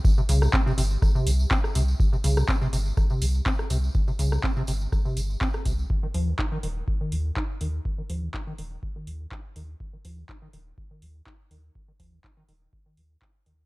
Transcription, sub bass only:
X:1
M:4/4
L:1/8
Q:"Swing 16ths" 1/4=123
K:Cphr
V:1 name="Sub bass" clef=bass
z C,, z G,,, z C,, z C,, | z C,, z G,,, z C,, z C,, | z C,, z G,,, z G,,, z C,, | z E,, z E,,, z E,, z E,, |
z E,, z E,,, z E,, z E,, | z E,, z E,,, z E,, z E,, | z E,, z E,,, z E,, z E,, |]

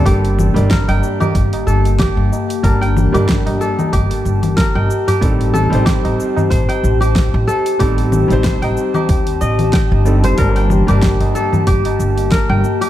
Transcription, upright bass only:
X:1
M:4/4
L:1/16
Q:"Swing 16ths" 1/4=93
K:Gm
V:1 name="Upright bass" clef=bass
G,,,3 G,,,2 G,,, z2 G,,, z G,,,3 G,,, z2 | G,,,3 G,,,2 G,,, z2 G,,, z G,,,3 G,,, z2 | A,,,3 A,,,2 A,,, z2 A,,, z A,,,3 A,,, z2 | A,,,3 A,,,2 A,,, z2 E,,2 A,,,3 G,,,3 |
G,,,3 G,,,2 G,,, z2 G,,, z G,,,3 G,,, z2 |]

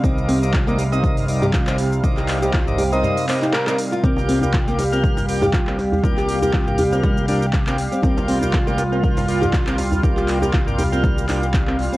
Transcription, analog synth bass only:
X:1
M:4/4
L:1/8
Q:"Swing 16ths" 1/4=120
K:Gphr
V:1 name="Analog synth bass" clef=bass
C,,8 | C,,2 C,,2 z4 | C,,8 | C,,2 C,,4- C,, z |
C,,8 | C,,2 C,,4- C,, z |]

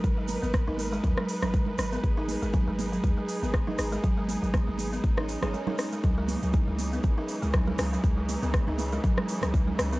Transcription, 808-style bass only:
X:1
M:4/4
L:1/16
Q:"Swing 16ths" 1/4=120
K:G#m
V:1 name="808-style bass" clef=bass
G,,,3 G,,, z G,,,3 D,, z2 G,,,3 G,,, z | G,,,3 G,,, z G,,,3 D,, z2 G,,,3 G,,, z | G,,,3 G,,, z G,,,3 G,,,3 G,,, z4 | C,,3 C,, z C,,3 G,,, z2 C,,3 C,, z |
C,,3 C,, z C,,3 G,,, z2 C,,3 C,, z |]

